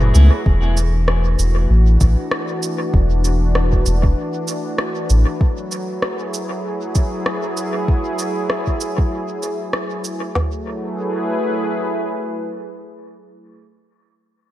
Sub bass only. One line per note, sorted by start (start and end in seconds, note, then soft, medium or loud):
0.00 0.12 F#1 medium
0.15 0.30 C#2 loud
0.46 1.36 E1 loud
1.39 1.66 E1 loud
1.70 1.97 A1 loud
2.01 2.16 A1 medium
2.94 3.84 E1 medium
3.86 4.14 E1 loud
5.10 5.25 A1 medium